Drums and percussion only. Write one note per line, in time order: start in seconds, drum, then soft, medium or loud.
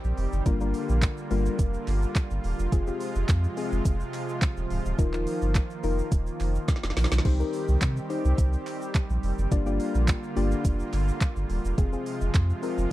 0.04 shaker medium
0.18 open hi-hat medium
0.18 shaker soft
0.33 shaker medium
0.46 kick loud
0.46 closed hi-hat medium
0.46 shaker medium
0.61 shaker medium
0.74 open hi-hat medium
0.74 shaker medium
0.89 shaker medium
1.02 kick loud
1.02 clap loud
1.02 clap medium
1.02 closed hi-hat medium
1.02 shaker medium
1.18 shaker medium
1.31 open hi-hat medium
1.31 shaker medium
1.46 shaker medium
1.59 kick loud
1.59 closed hi-hat medium
1.59 shaker medium
1.74 shaker soft
1.87 clap medium
1.87 open hi-hat medium
1.87 shaker medium
2.02 shaker medium
2.16 kick loud
2.16 clap loud
2.16 clap medium
2.16 closed hi-hat medium
2.16 shaker medium
2.31 shaker medium
2.44 open hi-hat medium
2.44 shaker soft
2.59 shaker medium
2.72 kick loud
2.72 closed hi-hat medium
2.72 shaker medium
2.87 shaker soft
3.00 open hi-hat medium
3.00 shaker medium
3.15 shaker medium
3.29 kick loud
3.29 clap loud
3.29 clap medium
3.29 closed hi-hat medium
3.29 shaker medium
3.44 shaker soft
3.57 open hi-hat medium
3.57 shaker medium
3.72 shaker medium
3.85 kick loud
3.85 closed hi-hat medium
3.85 shaker medium
4.00 shaker medium
4.14 clap medium
4.14 open hi-hat medium
4.14 shaker medium
4.29 shaker medium
4.42 kick loud
4.42 clap medium
4.42 clap loud
4.42 closed hi-hat medium
4.42 shaker medium
4.57 shaker medium
4.70 open hi-hat medium
4.70 shaker medium
4.86 shaker medium
4.99 kick loud
4.99 closed hi-hat medium
4.99 shaker medium
5.14 clap medium
5.14 shaker soft
5.27 open hi-hat loud
5.27 shaker medium
5.42 shaker medium
5.55 kick loud
5.55 clap loud
5.55 clap medium
5.55 closed hi-hat medium
5.55 shaker medium
5.70 shaker soft
5.84 open hi-hat medium
5.84 shaker medium
5.99 shaker medium
6.12 kick loud
6.12 closed hi-hat medium
6.12 shaker medium
6.27 shaker medium
6.40 clap medium
6.40 open hi-hat medium
6.40 shaker medium
6.55 shaker medium
6.68 kick loud
6.68 snare medium
6.68 clap medium
6.68 closed hi-hat medium
6.68 shaker medium
6.76 snare medium
6.83 snare medium
6.83 shaker soft
6.90 snare medium
6.97 snare medium
6.97 open hi-hat medium
6.97 shaker soft
7.04 snare medium
7.12 snare loud
7.12 shaker medium
7.18 snare loud
7.25 kick loud
7.25 crash medium
7.40 shaker medium
7.53 open hi-hat medium
7.53 shaker medium
7.68 shaker medium
7.82 kick loud
7.82 clap loud
7.82 clap medium
7.82 closed hi-hat medium
7.82 shaker medium
7.97 shaker medium
8.10 open hi-hat medium
8.10 shaker medium
8.25 shaker medium
8.38 kick loud
8.38 closed hi-hat medium
8.38 shaker medium
8.53 shaker medium
8.67 clap medium
8.67 open hi-hat medium
8.67 shaker medium
8.82 shaker medium
8.95 kick loud
8.95 clap medium
8.95 clap loud
8.95 closed hi-hat medium
8.95 shaker medium
9.10 shaker medium
9.23 open hi-hat medium
9.23 shaker medium
9.39 shaker medium
9.52 kick loud
9.52 closed hi-hat medium
9.52 shaker medium
9.67 shaker medium
9.80 open hi-hat medium
9.80 shaker medium
9.95 shaker medium
10.08 kick loud
10.08 clap medium
10.08 clap loud
10.08 closed hi-hat medium
10.08 shaker medium
10.23 shaker soft
10.37 open hi-hat medium
10.37 shaker medium
10.52 shaker medium
10.65 kick loud
10.65 closed hi-hat medium
10.65 shaker medium
10.80 shaker medium
10.93 clap medium
10.93 open hi-hat medium
10.93 shaker medium
11.08 shaker medium
11.21 kick loud
11.21 clap medium
11.21 clap loud
11.21 closed hi-hat medium
11.21 shaker medium
11.36 shaker medium
11.50 open hi-hat medium
11.50 shaker soft
11.65 shaker medium
11.78 kick loud
11.78 closed hi-hat medium
11.78 shaker medium
11.93 shaker medium
12.06 open hi-hat medium
12.06 shaker medium
12.21 shaker medium
12.34 kick loud
12.34 clap loud
12.34 clap medium
12.34 closed hi-hat medium
12.34 shaker medium
12.50 shaker soft
12.63 open hi-hat medium
12.63 shaker medium
12.78 shaker medium